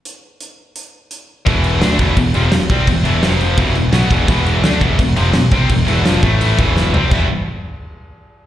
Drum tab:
CC |--------|xxxxxxxx|xxxxxxxx|xxxxxxxx|
HH |x-x-x-x-|--------|--------|--------|
SD |--------|--o---o-|--o---o-|--o---o-|
FT |--------|--------|--------|--------|
BD |--------|o--oo--o|o---o--o|o--oo--o|

CC |xxxxxx--|x-------|
HH |--------|--------|
SD |--o---o-|--------|
FT |-------o|--------|
BD |o--o-o--|o-------|